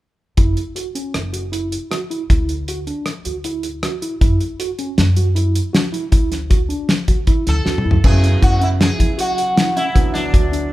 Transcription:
0.37 upright bass F#1, tine electric piano E4, kick, closed hi-hat
0.57 closed hi-hat
0.76 tine electric piano F#4, closed hi-hat
0.95 tine electric piano C#4, closed hi-hat
1.14 upright bass F#1, cross-stick, closed hi-hat
1.33 tine electric piano F#4, closed hi-hat
1.52 tine electric piano E4, closed hi-hat
1.72 closed hi-hat
1.91 tine electric piano F#4, cross-stick, closed hi-hat
2.10 tine electric piano E4, closed hi-hat
2.30 upright bass D2, tine electric piano E4, kick, closed hi-hat
2.49 closed hi-hat
2.68 tine electric piano F#4, closed hi-hat
2.87 tine electric piano D4, closed hi-hat
3.06 cross-stick, closed hi-hat
3.25 upright bass D2, tine electric piano F#4, closed hi-hat
3.44 tine electric piano E4, closed hi-hat
3.63 closed hi-hat
3.83 tine electric piano F#4, cross-stick, closed hi-hat
4.02 tine electric piano E4, closed hi-hat
4.21 upright bass F#2, tine electric piano E4, kick, closed hi-hat
4.41 closed hi-hat
4.60 tine electric piano F#4, closed hi-hat
4.79 tine electric piano C#4, closed hi-hat
4.98 upright bass F#2, snare, closed hi-hat
5.17 tine electric piano F#4, closed hi-hat
5.35 tine electric piano E4, closed hi-hat
5.55 closed hi-hat
5.73 tine electric piano F#4, snare, closed hi-hat
5.92 tine electric piano E4, closed hi-hat
6.12 upright bass D2, tine electric piano E4, kick, closed hi-hat
6.32 snare, closed hi-hat
6.50 tine electric piano F#4, kick, closed hi-hat
6.69 tine electric piano D4, closed hi-hat
6.89 snare, closed hi-hat
7.08 upright bass D2, tine electric piano F#4, kick, closed hi-hat
7.27 tine electric piano E4, kick, closed hi-hat
7.47 upright bass D2, sitar A4, snare, closed hi-hat
7.65 upright bass E2, tine electric piano F#4, snare
7.78 mid tom
7.85 upright bass F#2, tine electric piano E4
7.91 floor tom
8.04 upright bass F#2, grand piano C#3 F#3 B3 E4, tine electric piano C#4, sitar G#4, kick, crash
8.24 closed hi-hat
8.42 upright bass F#2, tine electric piano E4, sitar F#4, kick, closed hi-hat
8.61 tine electric piano C#4, sitar E4, closed hi-hat
8.81 sitar G#4, snare, closed hi-hat
8.99 upright bass F#3, tine electric piano E4, kick, closed hi-hat
9.18 tine electric piano F#4, sitar F#4, closed hi-hat
9.38 closed hi-hat
9.56 tine electric piano E4, snare, closed hi-hat
9.76 tine electric piano C#4, sitar E4, closed hi-hat
9.95 upright bass D2, grand piano D3 F#3 B3 E4, tine electric piano D4, kick, closed hi-hat
10.14 sitar D4, snare, closed hi-hat
10.33 upright bass D2, tine electric piano F#4, kick, closed hi-hat
10.52 tine electric piano D4, closed hi-hat

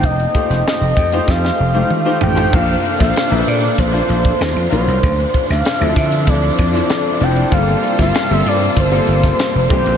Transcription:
0.03 slap bass F1, analog synth lead D#5, kick, closed hi-hat
0.20 closed hi-hat
0.35 grand piano A3 D#4 F4 G4 C5, kick, closed hi-hat
0.50 slap bass F1, snare, closed hi-hat
0.67 analog synth lead D#5, snare
0.81 slap bass F1, closed hi-hat
0.97 slap bass F2, kick, closed hi-hat
1.12 grand piano A3 D#4 F4 G4 C5, closed hi-hat
1.28 slap bass F2, analog synth lead F5, kick, snare
1.45 snare
1.60 slap bass F1
1.73 grand piano A3 D#4 F4 G4 C5, high tom
1.90 mid tom
2.05 grand piano A3 D#4 F4 G4 C5
2.21 slap bass A1, analog synth lead G5, floor tom
2.35 grand piano A3 D#4 F4 G4 C5, floor tom
2.52 slap bass A#1, string section C3 D4 A4, grand piano A#3 D4 F4 A4 C5, analog synth lead F5, kick, crash
2.85 closed hi-hat
2.98 slap bass A#1, grand piano A#3 D4 F4 A4 C5, analog synth lead F5, kick, closed hi-hat
3.02 snare
3.16 snare, closed hi-hat
3.30 slap bass A#1, grand piano A#3 D4 F4 A4 B4, analog synth lead E5, closed hi-hat
3.38 grand piano C5
3.47 slap bass A#2, analog synth lead D5, closed hi-hat
3.63 closed hi-hat
3.78 slap bass A#1, analog synth lead C5, kick, closed hi-hat
3.92 grand piano A#3 D4 F4 A4 C5
4.09 slap bass A#1, closed hi-hat
4.25 kick, closed hi-hat
4.40 slap bass D#2, string section C#3 F#3 F4, snare, closed hi-hat
4.56 slap bass F2
4.70 slap bass A#1, grand piano F#3 C#4 D#4 F4 A#4, analog synth lead C5, closed hi-hat
4.88 slap bass C2, closed hi-hat
5.02 slap bass D2, string section C3 F3 D4, kick, closed hi-hat
5.20 closed hi-hat
5.34 kick, closed hi-hat
5.50 slap bass D2, analog synth lead F5, snare, closed hi-hat
5.65 snare, closed hi-hat
5.80 slap bass D2, grand piano F3 C4 D4 E4 A4
5.96 slap bass D3, analog synth lead E5, kick, closed hi-hat
6.12 closed hi-hat
6.26 slap bass D2, grand piano F3 C4 D4 E4 A4, analog synth lead D5, kick, closed hi-hat
6.57 slap bass F2, kick, closed hi-hat
6.72 grand piano F3 C4 D4 E4 A4, snare, closed hi-hat
6.90 snare, closed hi-hat
7.20 slap bass F1, grand piano F3 C4 D4 E4 A4, analog synth lead G5, closed hi-hat
7.36 closed hi-hat
7.50 slap bass G1, grand piano G3 A#3 C4 F4 A4, string section A#3 F4 A4, analog synth lead F5, kick, closed hi-hat
7.68 closed hi-hat
7.84 closed hi-hat
7.98 slap bass G1, grand piano G3 A#3 C4 F4 A4, analog synth lead F5, kick, snare, closed hi-hat
8.15 snare, closed hi-hat
8.30 slap bass G1, grand piano G3 A#3 C4 F4 A4, analog synth lead E5
8.46 slap bass G2, analog synth lead D5, closed hi-hat
8.61 closed hi-hat
8.77 slap bass G1, analog synth lead C5, kick, closed hi-hat
8.91 grand piano G3 A#3 C4 F4 A4
9.07 slap bass G1, closed hi-hat
9.23 kick, snare, closed hi-hat
9.39 snare, closed hi-hat
9.55 slap bass F1
9.69 slap bass C2, string section D3 E3, grand piano E3 A#3 C4 D4 G4, analog synth lead C5, kick, closed hi-hat
9.86 slap bass A#1, closed hi-hat

